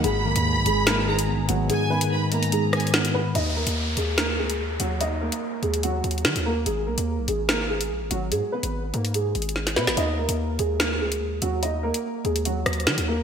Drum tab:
HH |x--------x--------x-----x--------x--------x-----|x--------x--------x--x--x-----x-x-x----x--------|x--------x--------x-----x--------x--------x-----|x--------x--------x--x--x-----x-x-x----x--------|
SD |------------------------o-----------------------|------------------------------r-----o-----------|------------------------o-----------------------|------------------------------------o-----------|

HH |x--------x--------x-----x--------x--------x-----|x--------x--------x--x--x-----x-x-x----x--------|x--------x--------x-----x--------x--------x-----|x--------x--------x--x--x-----x-x-x----x--------|
SD |------------------------o-----------------------|------------------------------------o--o--o--o--|------------------------o-----------------------|------------------------------r-----o-----------|